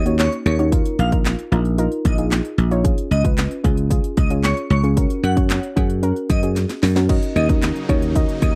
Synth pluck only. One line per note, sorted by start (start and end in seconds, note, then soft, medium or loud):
0.06 0.47 A#3 medium
0.06 0.47 C#4 medium
0.06 0.47 D#4 medium
0.06 0.47 F#4 medium
0.06 0.47 C#5 medium
0.59 0.69 A#3 medium
0.59 0.69 C#4 medium
0.59 0.69 D#4 medium
0.59 0.69 F#4 medium
0.59 0.69 C#5 medium
0.72 1.03 D#4 medium
0.72 1.03 F4 medium
0.72 1.03 A#4 loud
1.12 1.43 D#4 medium
1.12 1.43 F4 medium
1.12 1.43 A#4 medium
1.52 1.72 D#4 medium
1.52 1.73 F4 medium
1.52 1.73 A#4 loud
1.78 2.09 D#4 loud
1.78 2.09 F4 medium
1.78 2.10 A#4 loud
2.18 2.59 D#4 medium
2.18 2.59 F4 medium
2.18 2.60 G#4 medium
2.71 2.81 D#4 medium
2.71 2.82 F4 medium
2.71 2.82 C#5 loud
2.84 3.15 C#4 medium
2.84 3.15 F4 medium
2.84 3.16 G#4 loud
3.24 3.55 C#4 medium
3.24 3.55 F4 medium
3.24 3.55 B4 medium
3.64 3.85 C#4 loud
3.64 3.85 F4 medium
3.64 3.85 G#4 loud
3.90 4.21 C#4 medium
3.90 4.22 F4 medium
3.90 4.22 G#4 loud
4.30 4.72 C#4 medium
4.30 4.72 F4 medium
4.30 4.72 G#4 medium
4.83 4.94 C#4 medium
4.83 4.94 F4 medium
4.83 4.94 G#4 medium
4.96 5.28 C#4 medium
4.96 5.28 F#4 medium
4.96 5.28 A#4 loud
5.36 5.67 C#4 medium
5.36 5.68 F#4 medium
5.36 5.68 C#5 medium
5.76 5.97 C#4 medium
5.76 5.97 F#4 medium
5.76 5.97 G#4 loud
6.03 6.34 C#4 medium
6.03 6.34 F#4 medium
6.03 6.34 A#4 loud
6.43 6.84 C#4 medium
6.43 6.84 F#4 medium
6.43 6.84 G#4 medium
6.96 7.06 C#4 medium
6.96 7.06 F#4 medium
6.96 7.06 A#4 loud
7.09 7.40 C#4 medium
7.09 7.40 D#4 medium
7.09 7.40 F#4 medium
7.09 7.40 A#4 medium
7.09 7.40 D#5 loud
7.49 7.80 C#4 medium
7.49 7.80 D#4 medium
7.49 7.80 F#4 medium
7.49 7.80 A#4 medium
7.49 7.80 D#5 medium
7.89 8.09 C#4 loud
7.89 8.10 D#4 medium
7.89 8.10 F#4 medium
7.89 8.10 A#4 medium
7.89 8.10 C#5 loud
8.15 8.46 C#4 medium
8.15 8.46 D#4 medium
8.15 8.46 F#4 medium
8.15 8.47 A#4 medium
8.15 8.47 D#5 loud